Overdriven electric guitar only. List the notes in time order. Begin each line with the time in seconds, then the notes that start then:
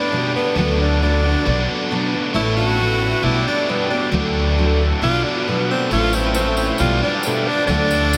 Already playing: B3 D4 G4 B4
0.55 D3 F#3 A3 D4 F#4 D5
1.45 B2 F#3 B3 D4 F#4 D5
2.33 A3 E4 A4 C#5
3.22 B3 D4 G4 D5
4.13 D3 F#3 A3 D4 F#4 D5
5.02 B2 F#3 B3 D4 F#4 D5
5.90 A3 E4 A4 C#5
6.79 B3 D4 G4 D5
7.68 D3 F#3 A3 D4 F#4 D5